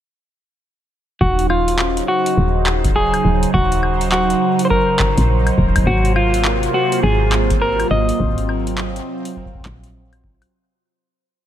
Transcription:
1.21 fm bass D#1, analog synth pad C#3 F#3 D#4, clean electric guitar F#4, synth texture C5, kick
1.39 closed hi-hat
1.50 clean electric guitar F4, high woodblock
1.68 closed hi-hat
1.79 clap
1.97 closed hi-hat
2.08 clean electric guitar F#4
2.26 closed hi-hat
2.37 fm bass D#1
2.66 clap, high woodblock
2.84 kick, closed hi-hat
2.96 clean electric guitar G#4
3.14 closed hi-hat, high woodblock
3.25 fm bass D#1
3.43 closed hi-hat
3.54 fm bass D#1, clean electric guitar F#4, kick
3.72 closed hi-hat
3.83 high woodblock
4.01 closed hi-hat
4.12 clean electric guitar F#4, clap
4.30 closed hi-hat
4.59 closed hi-hat
4.65 clean electric guitar C5
4.70 clean electric guitar A#4, kick
4.99 kick, clap
5.18 fm bass A#1, closed hi-hat
5.47 closed hi-hat, high woodblock
5.58 fm bass D#1, kick
5.64 kick
5.67 kick
5.76 kick, closed hi-hat, high woodblock
5.83 analog synth pad A#3 F4, kick
5.87 fm bass G#1, analog synth pad C3, clean electric guitar F#4, kick
6.05 closed hi-hat
6.16 clean electric guitar F4, high woodblock
6.34 closed hi-hat
6.45 clap
6.63 closed hi-hat
6.74 clean electric guitar F#4
6.92 closed hi-hat
7.03 fm bass G#1, clean electric guitar G#4
7.32 clap, high woodblock
7.50 kick, closed hi-hat
7.62 clean electric guitar A#4
7.80 closed hi-hat, high woodblock
7.91 fm bass G#1, clean electric guitar D#5
8.09 closed hi-hat
8.20 fm bass G#1, analog synth pad C4, kick
8.23 kick
8.26 kick
8.29 kick
8.35 kick, closed hi-hat
8.49 high woodblock
8.67 closed hi-hat
8.78 clap
8.96 closed hi-hat
9.25 closed hi-hat
9.36 kick
9.45 kick
9.54 kick
9.60 kick
9.65 fm bass A#1, kick, clap
9.84 closed hi-hat
10.13 closed hi-hat, high woodblock
10.24 kick
10.42 closed hi-hat, high woodblock

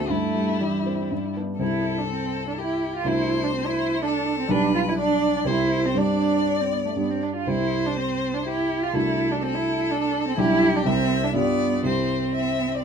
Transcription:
Already playing: grand piano D2 C4 F#4, violin A4
0.09 grand piano G2, cello A3, violin E4
0.35 grand piano G3
0.61 grand piano E3, cello G3
0.86 grand piano C4
1.12 grand piano G2
1.37 grand piano B3 D4
1.59 grand piano C2 G3 C4 E4, cello E4, violin A4
1.98 cello D4
2.10 cello C4
2.47 cello D4
2.58 cello E4, violin G4
2.96 cello F4
3.04 grand piano C2 A3 D4 F#4, cello E4, violin C5
3.43 cello D4
3.55 cello C4
3.66 cello E4
4.02 cello D4, violin A4
4.39 cello C4
4.49 grand piano B1 G3 D4 G4, cello D4, violin B4
4.75 cello F4
4.88 cello E4
4.99 cello D4, violin D5
5.37 cello D4
5.44 grand piano C2 G3 C4 G4, cello E4, violin C5
5.85 cello C4
5.95 grand piano G2 G3 C4 G4, cello D4, violin D5
6.61 cello C4
6.72 cello B3
6.85 cello A3
6.96 grand piano G2 G3 D4 G4, cello B3
7.10 cello C4
7.23 cello D4
7.36 cello F4
7.47 grand piano C2 G3 C4 G4, cello E4, violin C5
7.86 cello D4
7.97 cello C4
8.34 cello D4
8.46 cello E4, violin G4
8.83 cello F4
8.93 grand piano C2 A3 D4 F#4, cello E4, violin A4
9.31 cello D4
9.43 cello C4, violin A4
9.55 cello E4
9.91 cello D4
10.27 cello C4
10.38 grand piano B1 G3 D4 G4, cello E4, violin G4
10.76 cello D4
10.85 grand piano C2 G3 E4 G4, cello C4, violin E5
11.23 cello D4
11.34 grand piano G2 G3 F4 G4, cello B3, violin D5
11.83 grand piano C2 G3 E4 G4, cello C4, violin C5
12.35 violin E5
12.75 violin D5

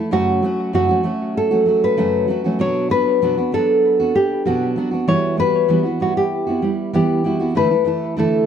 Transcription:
Already playing: steel-string acoustic guitar E4 A4
0.00 steel-string acoustic guitar A3
0.11 steel-string acoustic guitar F#2 C#3 F#3 A3 C#4 F#4, nylon-string guitar F#4
0.42 steel-string acoustic guitar F#3 A3 C#4 F#4
0.73 steel-string acoustic guitar F#2 C#3 F#3 A3 C#4 F#4, nylon-string guitar F#4
0.89 steel-string acoustic guitar F#3 A3 C#4 F#4
1.03 steel-string acoustic guitar F#3 A3 C#4 F#4
1.37 nylon-string guitar A4
1.51 steel-string acoustic guitar F#3 A3 C#4 F#4
1.66 steel-string acoustic guitar F#3 A3 C#4 F#4
1.84 nylon-string guitar B4
1.97 steel-string acoustic guitar F#2 C#3 F#3 A3 C#4 F#4
2.28 steel-string acoustic guitar F#3 A3 C#4 F#4
2.44 steel-string acoustic guitar F#3 A3 C#4 F#4
2.59 steel-string acoustic guitar B2 F#3 B3 D4 F#4, nylon-string guitar C#5
2.90 steel-string acoustic guitar F#3 B3 D4 F#4, nylon-string guitar B4
3.22 steel-string acoustic guitar B2 F#3 B3 D4 F#4
3.37 steel-string acoustic guitar B3 D4 F#4
3.52 steel-string acoustic guitar F#3 B3 D4 F#4, nylon-string guitar A4
3.99 steel-string acoustic guitar B3 D4 F#4
4.15 steel-string acoustic guitar B3 D4, nylon-string guitar G4
4.45 steel-string acoustic guitar B2 F#3 B3 D4 F#4, nylon-string guitar F#4
4.76 steel-string acoustic guitar F#3 B3 D4 F#4
4.91 steel-string acoustic guitar B3 D4 F#4
5.08 steel-string acoustic guitar E3 G3 B3 E4 F#4, nylon-string guitar C#5
5.37 steel-string acoustic guitar G3 B3 E4 F#4, nylon-string guitar B4
5.68 steel-string acoustic guitar E3 G3 B3 E4 F#4
5.83 steel-string acoustic guitar B3 E4 F#4
6.00 steel-string acoustic guitar G3 B3 E4, nylon-string guitar F#4
6.17 nylon-string guitar G4
6.47 steel-string acoustic guitar B3 E4 F#4
6.62 steel-string acoustic guitar G3 B3 E4
6.93 steel-string acoustic guitar E3 G3 B3 E4, nylon-string guitar G4
7.24 steel-string acoustic guitar G3 B3 E4 F#4
7.39 steel-string acoustic guitar B3 E4 F#4
7.55 steel-string acoustic guitar D3 E3 A3 E4 A4, nylon-string guitar B4
7.70 steel-string acoustic guitar A3 E4 A4
7.85 steel-string acoustic guitar E3 A3 E4 A4
8.17 steel-string acoustic guitar D3 E3 A3 E4 A4, nylon-string guitar A4

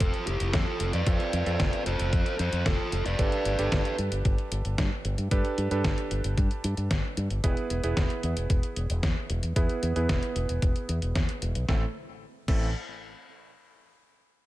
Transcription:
Already playing: electric grand piano C4 F4 A4 C5
0.00 fingered electric bass F1, lead electric guitar F4 A4, kick, closed hi-hat
0.14 closed hi-hat
0.27 fingered electric bass F1, lead electric guitar E4 G4, closed hi-hat
0.40 fingered electric bass F1, closed hi-hat
0.53 fingered electric bass F2, lead electric guitar F4 A4, kick, snare, closed hi-hat
0.80 fingered electric bass F1, closed hi-hat
0.93 fingered electric bass F2, lead electric guitar B4 D5, closed hi-hat
1.07 fingered electric bass F2, electric grand piano C4 F4 A4, kick, closed hi-hat
1.20 closed hi-hat
1.33 fingered electric bass F2, closed hi-hat
1.46 fingered electric bass F2, electric grand piano C4 F4 A4, closed hi-hat
1.60 fingered electric bass F1, kick, snare, closed hi-hat
1.73 closed hi-hat
1.86 fingered electric bass F1, lead electric guitar A4 C5, closed hi-hat
1.99 fingered electric bass F1, closed hi-hat
2.13 fingered electric bass F2, kick, closed hi-hat
2.26 closed hi-hat
2.39 fingered electric bass F2, lead electric guitar A4 C5, closed hi-hat
2.53 fingered electric bass F2, closed hi-hat
2.66 fingered electric bass F1, lead electric guitar F4 A4, kick, snare, closed hi-hat
2.92 fingered electric bass F1, closed hi-hat
3.06 fingered electric bass F1, lead electric guitar B4 D5, closed hi-hat
3.19 fingered electric bass G1, electric grand piano D4 G4 A4 B4, kick, closed hi-hat
3.32 closed hi-hat
3.45 fingered electric bass G1, closed hi-hat
3.59 fingered electric bass G1, electric grand piano D4 G4 A4 B4, closed hi-hat
3.72 fingered electric bass G1, kick, snare, closed hi-hat
3.85 closed hi-hat
3.99 fingered electric bass G2, closed hi-hat
4.12 fingered electric bass G1, closed hi-hat
4.25 fingered electric bass G1, kick, closed hi-hat
4.38 closed hi-hat
4.52 fingered electric bass G1, closed hi-hat
4.65 fingered electric bass G1, closed hi-hat
4.78 fingered electric bass G2, kick, snare, closed hi-hat
5.05 fingered electric bass G1, closed hi-hat
5.18 fingered electric bass G2, closed hi-hat
5.31 fingered electric bass G2, electric grand piano D4 G4 A4 B4, kick, closed hi-hat
5.45 closed hi-hat
5.58 fingered electric bass G2, closed hi-hat
5.71 fingered electric bass G2, electric grand piano D4 G4 A4 B4, closed hi-hat
5.84 fingered electric bass G1, kick, snare, closed hi-hat
5.98 closed hi-hat
6.11 fingered electric bass G1, closed hi-hat
6.24 fingered electric bass G1, closed hi-hat
6.38 fingered electric bass G2, kick, closed hi-hat
6.51 closed hi-hat
6.64 fingered electric bass G2, closed hi-hat
6.77 fingered electric bass G2, closed hi-hat
6.91 fingered electric bass G1, kick, snare, closed hi-hat
7.17 fingered electric bass G2, closed hi-hat
7.30 fingered electric bass G1, closed hi-hat
7.44 fingered electric bass E1, electric grand piano B3 E4 G#4 B4, kick, closed hi-hat
7.57 closed hi-hat
7.70 fingered electric bass E1, closed hi-hat
7.84 fingered electric bass E1, electric grand piano B3 E4 G#4 B4, closed hi-hat
7.97 fingered electric bass E1, kick, snare, closed hi-hat
8.10 closed hi-hat
8.23 fingered electric bass E2, closed hi-hat
8.37 fingered electric bass E1, closed hi-hat
8.50 fingered electric bass E1, kick, closed hi-hat
8.63 closed hi-hat
8.76 fingered electric bass E1, closed hi-hat
8.90 fingered electric bass E1, closed hi-hat
9.03 fingered electric bass E2, kick, snare, closed hi-hat
9.30 fingered electric bass E1, closed hi-hat
9.43 fingered electric bass E2, closed hi-hat
9.56 fingered electric bass E2, electric grand piano B3 E4 G#4 B4, kick, closed hi-hat
9.69 closed hi-hat
9.83 fingered electric bass E2, closed hi-hat
9.96 fingered electric bass E2, electric grand piano B3 E4 G#4 B4, closed hi-hat
10.09 fingered electric bass E1, kick, snare, closed hi-hat
10.23 closed hi-hat
10.36 fingered electric bass E1, closed hi-hat
10.49 fingered electric bass E1, closed hi-hat
10.62 fingered electric bass E1, kick, closed hi-hat
10.76 closed hi-hat
10.89 fingered electric bass E2, closed hi-hat
11.02 fingered electric bass E1, closed hi-hat
11.15 fingered electric bass E2, kick, snare, closed hi-hat
11.29 closed hi-hat
11.42 fingered electric bass E1, closed hi-hat
11.55 fingered electric bass B1, closed hi-hat
11.69 fingered electric bass A1, electric grand piano A3 C4 E4 A4, kick, snare
12.48 fingered electric bass A1, electric grand piano A3 C4 E4 A4, kick, crash

